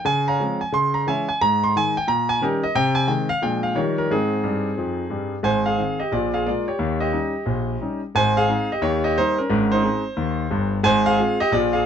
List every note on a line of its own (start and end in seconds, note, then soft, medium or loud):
0.05 0.34 C#3 medium
0.05 0.27 G#5 loud
0.28 0.59 C#5 medium
0.28 0.59 F5 medium
0.28 0.61 A#5 medium
0.40 0.58 F3 soft
0.40 0.59 G#3 soft
0.40 0.59 C4 soft
0.61 0.73 G#5 medium
0.72 1.01 C#3 medium
0.72 0.95 C6 loud
0.94 1.07 A#5 medium
1.07 1.25 E3 soft
1.07 1.25 G#3 soft
1.07 1.26 C#4 soft
1.07 1.27 C#5 medium
1.07 1.28 E5 medium
1.07 1.27 G#5 medium
1.29 1.41 G#5 medium
1.41 1.70 G#2 medium
1.41 1.62 A#5 loud
1.64 1.75 C6 medium
1.76 1.94 D#3 soft
1.76 1.94 G#3 soft
1.76 1.94 D#4 soft
1.76 1.97 G#5 loud
1.97 2.09 G5 medium
2.07 2.36 A#2 medium
2.07 2.29 A#5 loud
2.29 2.42 G#5 loud
2.41 2.59 D#3 soft
2.41 2.60 G3 soft
2.41 2.61 C#4 medium
2.41 2.62 D#4 medium
2.41 2.62 G4 medium
2.41 2.63 A#4 medium
2.63 2.76 D#5 medium
2.75 3.04 C3 medium
2.75 2.97 G5 loud
2.95 3.08 G#5 loud
3.08 3.27 D#3 medium
3.08 3.27 G#3 soft
3.08 3.27 C4 medium
3.08 3.30 G5 medium
3.29 3.42 F5 loud
3.42 3.71 A#2 medium
3.42 3.61 F3 soft
3.42 3.61 G#3 soft
3.42 3.62 D4 soft
3.42 3.64 G5 medium
3.63 3.76 F5 medium
3.75 4.04 D#3 medium
3.75 3.94 F3 soft
3.75 3.95 G3 soft
3.75 3.95 D#4 soft
3.75 3.97 G4 medium
3.75 3.96 A#4 medium
3.75 3.97 C#5 medium
3.98 4.10 A#4 medium
4.10 4.39 G#2 medium
4.10 5.30 C4 medium
4.10 5.30 D#4 medium
4.10 5.33 G#4 medium
4.44 4.69 G2 medium
4.44 4.69 G3 medium
4.77 5.03 F2 medium
4.77 5.03 F3 medium
5.10 5.36 G2 medium
5.10 5.36 G3 medium
5.43 5.73 G#1 medium
5.43 5.73 G#2 medium
5.43 5.65 C5 medium
5.43 5.66 G#5 medium
5.66 5.98 G#4 medium
5.66 6.00 F5 medium
5.78 5.97 D#3 soft
5.78 5.97 C4 soft
6.00 6.12 G4 medium
6.00 6.12 D#5 medium
6.12 6.41 A#1 medium
6.12 6.41 A#2 medium
6.12 6.33 F4 medium
6.12 6.34 D5 medium
6.34 6.46 G#4 medium
6.34 6.46 F5 medium
6.46 6.65 G#3 soft
6.46 6.65 A#3 soft
6.46 6.67 F4 medium
6.46 6.68 D5 medium
6.68 6.99 G4 medium
6.68 7.01 C#5 medium
6.79 7.08 D#2 medium
6.79 7.08 D#3 medium
7.00 7.99 G4 medium
7.00 8.02 D#5 medium
7.12 7.31 G3 soft
7.12 7.31 C#4 soft
7.12 7.32 D#4 soft
7.46 7.75 A#1 medium
7.46 7.75 A#2 medium
7.81 7.99 G3 soft
7.81 8.00 C#4 soft
7.81 8.00 D#4 soft
8.15 8.43 G#1 medium
8.15 8.44 G#2 medium
8.15 8.35 C5 medium
8.15 8.36 G#5 loud
8.37 8.68 G#4 medium
8.37 8.70 F5 loud
8.49 8.67 G#3 soft
8.49 8.67 C4 soft
8.49 8.68 D#4 medium
8.72 8.82 G4 medium
8.72 8.83 D#5 medium
8.82 9.10 D#2 medium
8.82 9.10 D#3 medium
8.82 9.03 G4 medium
8.82 9.03 C#5 loud
9.04 9.16 G4 medium
9.04 9.16 D#5 medium
9.17 9.35 G3 soft
9.17 9.36 A#3 medium
9.17 9.37 D#4 medium
9.17 9.38 C5 loud
9.38 9.70 C#4 medium
9.38 9.71 A#4 medium
9.50 9.78 G#1 medium
9.50 9.78 G#2 medium
9.72 9.82 D#4 medium
9.72 10.72 C5 loud
9.83 10.02 G#3 medium
9.83 10.01 C4 soft
9.83 10.02 D#4 medium
10.17 10.45 D#2 medium
10.17 10.45 D#3 medium
10.51 10.77 G1 medium
10.51 10.77 G2 medium
10.83 11.12 G#1 medium
10.83 11.12 G#2 loud
10.83 11.04 C5 loud
10.83 11.05 G#5 loud
11.06 11.37 G#4 medium
11.06 11.39 F5 loud
11.18 11.37 G#3 medium
11.18 11.37 C4 medium
11.18 11.37 F4 medium
11.40 11.52 G4 medium
11.40 11.52 D#5 loud
11.52 11.80 A#1 medium
11.52 11.80 A#2 medium
11.52 11.72 F4 medium
11.52 11.73 D5 loud
11.73 11.85 G#4 medium
11.73 11.85 F5 medium